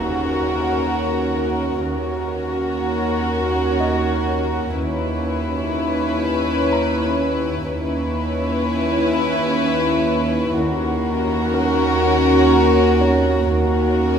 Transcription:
0.00 1.79 D#2 soft
0.00 1.79 C#4 soft
0.00 1.78 F#4 soft
0.00 1.79 F#4 soft
0.00 1.79 A#4 soft
0.00 1.78 C#5 medium
0.00 2.28 E5 soft
0.00 impact soft
1.81 4.72 D#2 soft
1.81 4.73 D#2 soft
1.81 4.72 C#4 soft
1.81 4.72 F#4 medium
1.81 4.72 F#4 soft
1.81 4.72 A#4 medium
1.81 4.72 A#4 soft
1.81 4.72 C#5 medium
3.80 6.68 D#4 soft
3.80 6.68 D#5 soft
4.75 7.63 D#2 soft
4.75 7.67 C#4 medium
4.75 7.63 C#4 soft
4.75 7.63 E4 soft
4.75 7.64 B4 medium
4.75 7.63 B4 medium
4.75 7.63 C#5 medium
6.72 9.58 A#5 soft
7.66 10.54 D#2 soft
7.66 10.54 C#4 soft
7.66 10.53 E4 medium
7.66 10.54 E4 medium
7.66 10.53 B4 medium
7.66 10.54 B4 medium
7.66 10.53 C#5 medium
10.57 13.45 D#2 medium
10.57 13.45 C#4 medium
10.57 13.48 F#4 medium
10.57 13.45 F#4 medium
10.57 13.48 A#4 medium
10.57 13.45 A#4 medium
10.57 13.44 C#5 medium
11.54 14.19 A#4 medium
13.01 14.19 C#4 soft
13.01 14.19 C#5 medium
13.48 14.19 D#2 medium
13.48 14.19 C#4 medium
13.48 14.19 F#4 medium
13.48 14.19 A#4 medium
13.48 14.19 C#5 medium

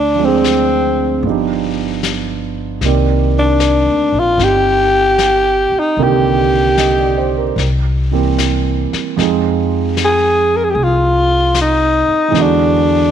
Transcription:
0.00 1.20 D2 medium
0.00 0.27 D4 medium
0.15 1.22 F3 soft
0.15 1.23 G#3 soft
0.21 1.24 C4 soft
0.21 1.25 D4 soft
0.25 1.27 C4 medium
0.25 1.28 G#4 soft
0.44 snare soft
0.44 hi-hat pedal soft
1.23 2.78 G1 medium
1.23 2.83 F3 soft
1.23 2.83 B3 soft
1.23 brush sweep soft
1.27 2.84 D4 soft
1.27 2.85 D#4 soft
1.27 2.85 G4 soft
2.03 snare soft
2.03 hi-hat pedal soft
2.81 3.83 C2 medium
2.81 5.97 D#3 soft
2.81 5.98 A#3 soft
2.81 brush sweep soft
2.81 snare soft
2.86 4.37 C4 soft
2.86 4.40 G4 soft
2.86 6.00 D5 soft
3.39 4.21 D4 medium
3.60 snare soft
3.60 hi-hat pedal soft
3.86 4.11 D2 soft
4.12 4.37 A#1 soft
4.20 4.45 F4 medium
4.38 5.68 G1 medium
4.38 5.97 C4 soft
4.38 5.98 D#4 soft
4.38 5.99 G4 soft
4.38 brush sweep soft
4.38 snare soft
4.44 5.81 G4 medium
5.19 snare soft
5.19 hi-hat pedal soft
5.72 muted upright bass stroke soft
5.79 6.05 D#4 medium
5.97 7.52 C2 medium
5.97 7.57 D3 soft
5.97 7.57 D#3 soft
5.97 7.58 A#3 soft
5.97 7.57 C4 soft
5.97 7.58 G4 soft
5.97 brush sweep soft
6.04 7.60 G4 medium
6.77 7.16 D#5 soft
6.77 snare soft
6.77 hi-hat pedal soft
6.98 7.33 D5 soft
7.18 7.42 C5 soft
7.38 7.65 A#4 soft
7.56 8.88 C2 medium
7.56 brush sweep soft
7.56 snare soft
8.11 9.17 E3 soft
8.11 9.18 G3 soft
8.11 9.18 A#3 soft
8.11 9.17 C4 soft
8.11 9.18 G4 soft
8.38 snare soft
8.38 hi-hat pedal soft
8.92 muted upright bass stroke soft
8.92 snare soft
9.16 10.72 F2 medium
9.16 12.34 F3 soft
9.16 12.29 G#3 soft
9.16 12.35 C4 soft
9.16 12.36 D#4 soft
9.16 brush sweep soft
9.16 snare soft
9.21 12.36 G#4 soft
9.97 snare soft
9.97 hi-hat pedal soft
10.05 10.58 G#4 medium
10.57 10.66 A#4 medium
10.64 10.72 G#4 medium
10.70 10.76 G4 medium
10.75 12.05 C2 medium
10.75 10.85 G#4 medium
10.75 brush sweep soft
10.83 11.59 F4 medium
11.54 snare soft
11.54 hi-hat pedal soft
11.61 12.43 D#4 medium
12.08 muted upright bass stroke soft
12.28 13.11 E2 medium
12.28 13.11 E3 soft
12.28 13.11 G#3 soft
12.33 13.11 D3 soft
12.33 13.11 B3 soft
12.33 brush sweep soft
12.33 snare soft
12.39 13.11 D4 medium
12.39 13.11 F#4 soft

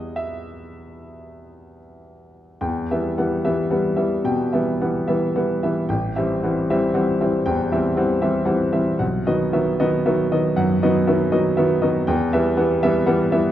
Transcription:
0.00 2.56 E2 soft
0.00 2.57 E3 soft
0.00 2.57 G3 soft
0.00 2.58 B3 soft
0.00 0.18 D#5 medium
0.16 1.79 E5 medium
2.61 2.89 E2 medium
2.61 3.07 G5 soft
2.91 3.16 E3 soft
2.91 3.16 G3 soft
2.91 3.16 B3 soft
2.91 3.35 E5 soft
3.18 3.43 E3 soft
3.18 3.43 G3 soft
3.18 3.43 B3 soft
3.18 3.45 F#5 soft
3.45 3.69 E3 soft
3.45 3.69 G3 soft
3.45 3.70 B3 soft
3.45 3.88 E5 medium
3.71 3.95 E3 soft
3.71 3.95 G3 soft
3.71 3.96 B3 soft
3.71 3.98 F#5 soft
3.96 4.22 E3 soft
3.96 4.22 G3 soft
3.96 4.22 B3 soft
3.96 4.41 E5 soft
4.24 4.52 B2 medium
4.24 4.69 G5 medium
4.53 4.78 E3 soft
4.53 4.78 G3 soft
4.53 4.79 B3 soft
4.53 4.97 E5 soft
4.81 5.06 E3 soft
4.81 5.06 G3 soft
4.81 5.06 B3 soft
4.81 5.08 F#5 soft
5.08 5.32 E3 soft
5.08 5.33 G3 soft
5.08 5.33 B3 soft
5.08 5.51 E5 soft
5.36 5.60 E3 soft
5.36 5.60 G3 soft
5.36 5.60 B3 soft
5.36 5.63 F#5 soft
5.63 5.87 E3 soft
5.63 5.87 G3 soft
5.63 5.87 B3 soft
5.63 5.90 E5 soft
5.89 6.15 A1 medium
5.89 6.31 G5 soft
6.16 6.40 E3 soft
6.16 6.40 G3 soft
6.16 6.40 C4 soft
6.16 6.58 E5 soft
6.43 6.66 E3 soft
6.43 6.66 G3 soft
6.43 6.67 C4 soft
6.43 6.68 F#5 soft
6.70 6.92 E3 soft
6.70 6.92 G3 soft
6.70 6.93 C4 medium
6.70 7.10 E5 medium
6.94 7.17 E3 soft
6.94 7.17 G3 soft
6.94 7.17 C4 soft
6.94 7.19 F#5 soft
7.21 7.43 E3 soft
7.21 7.44 G3 soft
7.21 7.44 C4 soft
7.21 7.61 E5 soft
7.46 7.70 E2 medium
7.46 7.86 G5 medium
7.72 7.94 E3 soft
7.72 7.94 G3 soft
7.72 7.95 C4 soft
7.72 8.12 E5 soft
7.96 8.19 E3 soft
7.96 8.19 G3 soft
7.96 8.20 C4 medium
7.96 8.22 F#5 soft
8.22 8.44 E3 soft
8.22 8.45 G3 soft
8.22 8.45 C4 soft
8.22 8.63 E5 medium
8.45 8.70 E3 soft
8.45 8.71 G3 soft
8.45 8.71 C4 soft
8.45 8.73 F#5 soft
8.72 8.97 E3 soft
8.72 8.98 G3 soft
8.72 8.98 C4 soft
8.72 9.00 E5 soft
8.99 9.27 B1 medium
8.99 9.44 F#5 soft
9.26 9.51 D#3 soft
9.26 9.52 F#3 soft
9.26 9.52 B3 soft
9.26 9.70 D#5 medium
9.53 9.77 D#3 soft
9.53 9.78 F#3 soft
9.53 9.78 B3 medium
9.53 9.80 E5 soft
9.80 10.03 D#3 medium
9.80 10.04 F#3 soft
9.80 10.04 B3 medium
9.80 10.21 D#5 medium
10.06 10.29 D#3 medium
10.06 10.29 F#3 soft
10.06 10.29 B3 medium
10.06 10.32 E5 soft
10.31 10.54 D#3 soft
10.31 10.55 F#3 soft
10.31 10.55 B3 soft
10.31 10.72 D#5 medium
10.56 10.81 F#2 medium
10.56 10.97 F#5 medium
10.82 11.05 D#3 soft
10.82 11.05 F#3 medium
10.82 11.06 B3 medium
10.82 11.23 D#5 medium
11.07 11.30 D#3 medium
11.07 11.30 F#3 medium
11.07 11.30 B3 soft
11.07 11.33 E5 soft
11.32 11.55 D#3 medium
11.32 11.55 F#3 medium
11.32 11.56 B3 soft
11.32 11.72 D#5 medium
11.57 11.80 D#3 medium
11.57 11.80 F#3 medium
11.57 11.81 B3 medium
11.57 11.82 E5 medium
11.82 12.05 D#3 soft
11.82 12.05 F#3 medium
11.82 12.06 B3 medium
11.82 12.08 D#5 medium
12.07 12.33 E2 medium
12.07 12.48 G5 medium
12.33 12.56 E3 soft
12.33 12.56 G3 medium
12.33 12.56 B3 medium
12.33 12.73 E5 medium
12.57 12.80 E3 soft
12.57 12.80 G3 soft
12.57 12.80 B3 medium
12.57 12.82 F#5 soft
12.83 13.05 E3 medium
12.83 13.05 G3 medium
12.83 13.05 B3 medium
12.83 13.22 E5 medium
13.06 13.29 E3 medium
13.06 13.29 G3 medium
13.06 13.30 B3 medium
13.06 13.32 F#5 medium
13.31 13.52 E3 soft
13.31 13.52 G3 soft
13.31 13.52 B3 medium
13.31 13.52 E5 medium

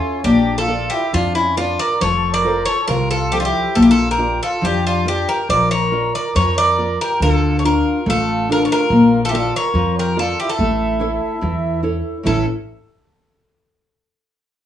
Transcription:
0.00 0.22 C#4 medium
0.00 0.20 F4 medium
0.00 0.16 A4 soft
0.00 0.16 C#5 medium
0.00 0.16 E5 medium
0.24 0.86 A#1 medium
0.24 0.68 A#3 medium
0.24 0.56 D4 medium
0.24 0.56 G4 medium
0.58 0.90 F4 medium
0.58 0.92 A4 medium
0.68 1.04 F4 medium
0.68 1.04 A#4 medium
0.68 1.04 D5 medium
0.90 1.11 G4 medium
0.94 1.13 E4 medium
1.13 1.75 F2 loud
1.13 1.56 F3 medium
1.13 1.35 D4 medium
1.13 1.34 F4 medium
1.35 1.57 C#4 medium
1.35 1.57 E4 medium
1.57 1.80 D4 medium
1.57 1.92 F4 medium
1.57 1.78 F4 medium
1.57 1.92 A#4 soft
1.57 1.93 D5 medium
1.79 2.01 A#4 medium
1.79 2.00 D5 loud
2.00 2.63 F1 loud
2.00 2.44 F3 medium
2.00 2.34 A4 medium
2.00 2.32 C#5 loud
2.34 2.66 A#4 loud
2.34 2.65 D5 loud
2.44 2.80 F4 medium
2.44 2.80 A4 soft
2.44 2.81 C5 medium
2.65 2.88 A4 medium
2.65 2.87 C#5 loud
2.88 3.50 C2 medium
2.88 3.32 C3 medium
2.88 3.10 F4 medium
2.88 3.09 A#4 loud
3.11 3.32 F4 medium
3.11 3.34 A4 loud
3.32 3.67 F3 soft
3.32 3.39 C4 medium
3.32 3.39 G4 medium
3.32 3.67 A4 soft
3.32 3.68 C5 medium
3.40 3.46 D4 medium
3.40 3.45 F4 medium
3.45 3.75 E4 medium
3.45 3.78 G4 medium
3.75 4.38 A#1 medium
3.75 4.18 A#3 medium
3.75 3.84 F4 medium
3.75 3.82 A4 loud
3.82 3.89 E4 medium
3.82 3.89 G4 medium
3.89 4.08 F4 medium
3.89 4.09 A4 loud
4.11 4.41 G4 medium
4.11 4.41 A#4 loud
4.18 4.54 F4 medium
4.18 4.54 A#4 soft
4.18 4.54 D5 medium
4.43 4.63 F4 medium
4.43 4.65 A4 medium
4.62 5.24 F2 loud
4.62 5.05 F3 medium
4.62 4.86 G4 loud
4.66 4.85 D4 medium
4.87 5.06 D4 medium
4.87 5.08 F4 medium
5.05 5.28 D4 medium
5.05 5.40 F4 soft
5.05 5.30 G4 medium
5.05 5.41 A#4 soft
5.05 5.41 D5 medium
5.29 5.50 G4 medium
5.29 5.49 A#4 loud
5.49 6.10 A#1 medium
5.49 5.92 F3 medium
5.49 5.72 A#4 medium
5.49 5.70 D5 loud
5.71 6.13 A#4 medium
5.71 6.15 C#5 loud
5.92 6.27 F4 medium
5.92 6.27 A#4 soft
5.92 6.28 D5 medium
6.15 6.36 A#4 medium
6.15 6.35 D5 medium
6.35 6.96 F2 loud
6.35 6.77 F3 medium
6.35 6.57 A#4 medium
6.35 6.56 C#5 loud
6.58 6.98 A#4 medium
6.58 7.01 D5 loud
6.78 7.13 F4 medium
6.78 7.13 A#4 soft
6.78 7.13 D5 medium
7.01 7.22 G4 medium
7.01 7.21 A#4 loud
7.20 7.80 D2 medium
7.20 7.63 D3 medium
7.20 7.56 F4 medium
7.20 7.59 A4 loud
7.59 7.64 A4 medium
7.59 7.65 C#5 medium
7.64 7.98 D4 medium
7.64 7.98 F4 medium
7.64 8.05 F4 medium
7.64 8.09 A#4 medium
8.06 8.66 A1 loud
8.06 8.48 A3 medium
8.06 8.47 F4 medium
8.06 8.48 A4 loud
8.49 8.83 D4 medium
8.49 8.83 F4 soft
8.49 8.64 F4 medium
8.49 8.84 A4 medium
8.49 8.65 A#4 medium
8.65 8.71 A4 medium
8.65 8.71 C#5 medium
8.72 9.20 F4 medium
8.72 9.20 A#4 loud
8.90 9.49 A#1 loud
8.90 9.33 A#3 medium
9.25 9.30 F4 medium
9.25 9.29 A4 medium
9.29 9.35 E4 medium
9.29 9.67 F4 medium
9.29 9.35 G4 medium
9.33 9.53 A4 medium
9.33 9.67 A#4 medium
9.33 9.67 D5 medium
9.38 9.55 F4 medium
9.56 9.95 A#4 medium
9.56 9.94 C#5 loud
9.74 10.33 F2 loud
9.74 10.16 F3 medium
9.99 10.17 G4 medium
9.99 10.17 A#4 medium
10.17 10.50 F4 medium
10.17 10.38 F4 medium
10.17 10.38 A4 medium
10.17 10.50 A#4 soft
10.17 10.51 D5 medium
10.40 10.49 E4 medium
10.40 10.49 G4 medium
10.49 11.81 E4 medium
10.49 11.80 A4 medium
10.59 11.17 A1 medium
10.59 10.99 A3 medium
11.00 11.33 E4 medium
11.00 11.34 A4 medium
11.00 11.34 C#5 medium
11.41 12.00 E2 loud
11.41 11.82 E3 medium
11.83 12.16 E4 soft
11.83 12.16 A4 soft
11.83 12.17 C#5 medium
12.23 12.45 A1 loud
12.23 12.43 A2 medium
12.23 12.44 E3 soft
12.23 12.44 A3 soft
12.23 12.44 C#4 medium
12.23 12.45 E4 medium
12.23 12.45 A4 medium

